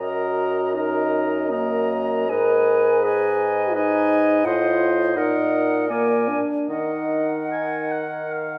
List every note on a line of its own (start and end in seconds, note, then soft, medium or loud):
0.00 2.32 F#2 soft
0.00 0.76 F#4 medium
0.00 0.72 A#4 soft
0.00 0.72 D#5 soft
0.00 0.72 A#5 soft
0.74 1.52 D#4 medium
0.74 1.50 A#4 soft
0.74 1.50 D#5 soft
0.74 1.49 A#5 soft
1.50 2.28 A#3 medium
1.50 2.28 A#4 soft
1.50 2.29 D#5 soft
1.50 2.31 A#5 soft
2.29 4.46 G#2 medium
2.29 3.05 A#4 medium
2.29 3.03 B4 soft
2.29 3.03 D#5 soft
2.29 3.04 G#5 medium
3.03 3.75 G#4 medium
3.03 3.74 B4 medium
3.03 3.74 D#5 medium
3.03 3.74 G#5 medium
3.74 4.47 D#4 medium
3.74 4.48 B4 medium
3.74 4.45 D#5 medium
3.74 4.47 G#5 medium
4.45 5.16 A2 medium
4.45 5.18 F4 medium
4.45 5.19 C5 soft
4.45 5.15 D#5 medium
4.45 4.92 F#5 medium
5.15 6.37 A#2 medium
5.15 5.90 D#4 medium
5.15 5.91 A#4 medium
5.15 5.92 D#5 medium
5.15 5.88 F#5 soft
5.89 6.30 A#3 medium
5.89 6.41 A#4 soft
5.89 6.42 D5 soft
5.89 6.40 G#5 soft
6.28 6.70 D4 medium
6.68 8.58 D#3 soft
6.68 8.30 D#4 soft
6.68 8.58 A#4 soft
6.68 7.38 D#5 soft
6.68 8.58 F#5 soft
7.51 7.93 G#5 soft
7.92 8.33 F#5 soft
8.32 8.58 F5 soft